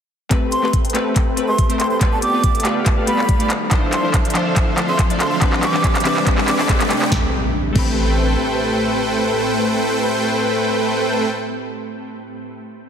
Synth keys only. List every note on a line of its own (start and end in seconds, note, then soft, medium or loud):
0.30 0.60 A3 medium
0.30 0.61 C4 medium
0.30 0.61 G4 medium
0.30 0.61 B4 medium
0.62 0.72 A3 medium
0.62 0.72 C4 medium
0.62 0.72 G4 medium
0.62 0.73 B4 medium
0.94 1.34 A3 medium
0.94 1.35 C4 medium
0.94 1.35 G4 medium
0.94 1.35 B4 medium
1.36 1.67 A3 medium
1.36 1.67 C4 medium
1.36 1.67 G4 medium
1.36 1.68 B4 medium
1.69 1.75 A3 medium
1.69 1.75 C4 medium
1.69 1.75 G4 medium
1.69 1.76 C5 medium
2.00 2.30 A3 medium
2.00 2.31 F4 medium
2.00 2.31 G4 medium
2.00 2.31 B4 medium
2.33 2.42 A3 medium
2.33 2.42 F4 medium
2.33 2.43 G4 medium
2.33 2.43 B4 medium
2.64 3.05 A3 medium
2.64 3.05 F4 medium
2.64 3.05 G4 medium
2.64 3.06 B4 medium
3.06 3.37 A3 medium
3.06 3.37 F4 medium
3.06 3.37 G4 medium
3.06 3.38 B4 medium
3.39 3.45 A3 medium
3.39 3.45 F4 medium
3.39 3.46 G4 medium
3.39 3.46 D5 medium
3.70 4.01 F3 medium
3.70 4.01 D4 medium
3.70 4.01 E4 medium
3.70 4.02 C5 medium
4.03 4.12 F3 medium
4.03 4.12 D4 medium
4.03 4.13 E4 medium
4.03 4.13 C5 medium
4.34 4.75 F3 medium
4.34 4.75 D4 medium
4.34 4.75 E4 medium
4.34 4.76 C5 loud
4.77 5.07 F3 medium
4.77 5.07 D4 medium
4.77 5.08 E4 medium
4.77 5.08 C5 medium
5.09 5.15 F3 medium
5.09 5.16 D4 medium
5.09 5.16 E4 medium
5.09 5.16 D5 medium
5.40 5.71 E3 medium
5.40 5.71 C4 medium
5.40 5.71 D4 medium
5.40 5.72 B4 loud
5.73 5.82 E3 medium
5.73 5.83 C4 medium
5.73 5.83 D4 medium
5.73 5.83 B4 medium
6.04 6.45 E3 medium
6.04 6.45 C4 medium
6.04 6.46 D4 medium
6.04 6.46 B4 medium
6.47 6.54 E3 medium
6.47 6.54 C4 medium
6.47 6.54 D4 medium
6.47 6.55 D5 medium
6.58 6.77 E3 medium
6.58 6.78 C4 medium
6.58 6.78 D4 medium
6.58 6.78 A4 medium
6.80 6.85 E3 medium
6.80 6.86 C4 medium
6.80 6.86 D4 medium
6.80 6.86 B4 loud
7.09 7.23 A3 medium
7.09 7.24 C4 medium
7.13 7.25 G4 medium
7.13 7.26 B5 loud
7.73 11.97 A3 medium
7.73 11.98 C4 medium
7.77 11.99 G4 medium
7.77 12.00 B5 loud